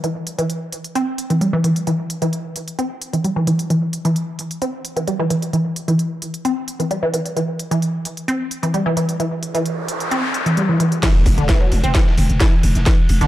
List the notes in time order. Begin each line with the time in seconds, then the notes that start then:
0.04 E3, closed hi-hat
0.27 closed hi-hat
0.39 E3, closed hi-hat
0.50 closed hi-hat
0.72 closed hi-hat
0.84 closed hi-hat
0.95 C4, closed hi-hat
1.18 closed hi-hat
1.30 E3, closed hi-hat
1.41 G3, closed hi-hat
1.53 E3
1.64 E3, closed hi-hat
1.76 closed hi-hat
1.87 E3, closed hi-hat
2.10 closed hi-hat
2.22 E3, closed hi-hat
2.33 closed hi-hat
2.56 closed hi-hat
2.68 closed hi-hat
2.79 C4, closed hi-hat
3.02 closed hi-hat
3.13 E3, closed hi-hat
3.24 G3, closed hi-hat
3.36 E3
3.47 E3, closed hi-hat
3.59 closed hi-hat
3.70 E3, closed hi-hat
3.93 closed hi-hat
4.05 E3, closed hi-hat
4.16 closed hi-hat
4.39 closed hi-hat
4.51 closed hi-hat
4.62 C4, closed hi-hat
4.85 closed hi-hat
4.97 E3, closed hi-hat
5.07 G3, closed hi-hat
5.20 E3
5.30 E3, closed hi-hat
5.42 closed hi-hat
5.53 E3, closed hi-hat
5.76 closed hi-hat
5.88 E3, closed hi-hat
5.99 closed hi-hat
6.22 closed hi-hat
6.34 closed hi-hat
6.45 C4, closed hi-hat
6.68 closed hi-hat
6.80 E3, closed hi-hat
6.91 G3, closed hi-hat
7.03 E3
7.14 E3, closed hi-hat
7.26 closed hi-hat
7.37 E3, closed hi-hat
7.59 closed hi-hat
7.71 E3, closed hi-hat
7.82 closed hi-hat
8.05 closed hi-hat
8.17 closed hi-hat
8.28 C4, closed hi-hat
8.51 closed hi-hat
8.63 E3, closed hi-hat
8.74 G3, closed hi-hat
8.86 E3
8.97 E3, closed hi-hat
9.09 closed hi-hat
9.20 E3, closed hi-hat, noise sweep
9.43 closed hi-hat
9.55 E3, closed hi-hat
9.66 closed hi-hat
9.88 closed hi-hat
10.00 closed hi-hat
10.11 C4, closed hi-hat
10.34 closed hi-hat
10.46 E3, closed hi-hat
10.57 G3, closed hi-hat
10.69 E3
10.80 E3, closed hi-hat
10.92 closed hi-hat
11.03 E3, kick, snare, closed hi-hat, crash, ride, impact
11.26 E1, kick, open hi-hat, ride
11.38 E1 D3, closed hi-hat, mid tom
11.48 E3, kick, snare, closed hi-hat, ride
11.61 F#3
11.72 E1, open hi-hat, ride
11.84 E1 C4, closed hi-hat, mid tom
11.95 E3, kick, snare, closed hi-hat, ride
12.07 snare
12.18 E1, open hi-hat, mid tom, ride
12.30 E1, closed hi-hat, mid tom
12.40 E3, kick, snare, closed hi-hat, ride
12.63 E1, open hi-hat, mid tom, ride
12.75 E1, snare, closed hi-hat
12.86 E3, kick, snare, closed hi-hat, ride
13.09 E1, open hi-hat, ride
13.21 E1 D3, snare, closed hi-hat, mid tom